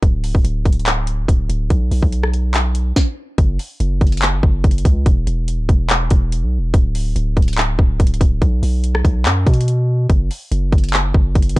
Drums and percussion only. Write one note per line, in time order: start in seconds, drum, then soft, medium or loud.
0.03 kick loud
0.03 closed hi-hat medium
0.24 open hi-hat medium
0.35 kick medium
0.45 closed hi-hat medium
0.65 kick medium
0.65 closed hi-hat medium
0.72 closed hi-hat soft
0.80 closed hi-hat soft
0.86 clap loud
0.86 closed hi-hat medium
1.07 closed hi-hat medium
1.28 kick loud
1.28 closed hi-hat medium
1.50 closed hi-hat medium
1.70 kick loud
1.70 closed hi-hat medium
1.91 open hi-hat medium
2.03 kick medium
2.12 closed hi-hat medium
2.23 cross-stick loud
2.33 closed hi-hat medium
2.54 clap loud
2.54 closed hi-hat medium
2.75 closed hi-hat medium
2.96 kick loud
2.96 snare medium
3.38 kick loud
3.38 closed hi-hat medium
3.59 open hi-hat medium
3.80 closed hi-hat medium
4.01 kick medium
4.01 closed hi-hat soft
4.07 closed hi-hat soft
4.12 closed hi-hat medium
4.17 closed hi-hat medium
4.22 clap loud
4.22 closed hi-hat medium
4.43 kick loud
4.64 kick loud
4.64 closed hi-hat medium
4.71 closed hi-hat medium
4.78 closed hi-hat medium
4.85 kick loud
4.85 closed hi-hat medium
5.06 kick loud
5.06 closed hi-hat medium
5.27 closed hi-hat medium
5.48 closed hi-hat medium
5.69 kick medium
5.69 closed hi-hat medium
5.90 clap loud
5.90 closed hi-hat medium
6.10 kick loud
6.10 closed hi-hat medium
6.32 closed hi-hat medium
6.74 kick loud
6.74 closed hi-hat medium
6.95 open hi-hat medium
7.16 closed hi-hat medium
7.37 kick medium
7.37 closed hi-hat soft
7.42 closed hi-hat soft
7.48 closed hi-hat medium
7.53 closed hi-hat medium
7.58 clap loud
7.58 closed hi-hat medium
7.79 kick loud
8.00 kick loud
8.00 closed hi-hat medium
8.07 closed hi-hat medium
8.14 closed hi-hat medium
8.21 kick loud
8.21 closed hi-hat medium
8.42 kick loud
8.42 closed hi-hat medium
8.63 open hi-hat medium
8.84 closed hi-hat medium
8.95 cross-stick loud
9.05 kick medium
9.05 closed hi-hat medium
9.25 clap loud
9.25 closed hi-hat medium
9.47 kick loud
9.47 closed hi-hat medium
9.54 closed hi-hat medium
9.61 closed hi-hat medium
9.68 closed hi-hat medium
10.10 kick loud
10.10 closed hi-hat medium
10.31 open hi-hat medium
10.52 closed hi-hat medium
10.72 kick medium
10.72 closed hi-hat soft
10.78 closed hi-hat soft
10.84 closed hi-hat medium
10.89 closed hi-hat medium
10.93 clap loud
10.93 closed hi-hat medium
11.14 kick loud
11.35 kick loud
11.35 closed hi-hat medium
11.42 closed hi-hat medium
11.49 closed hi-hat medium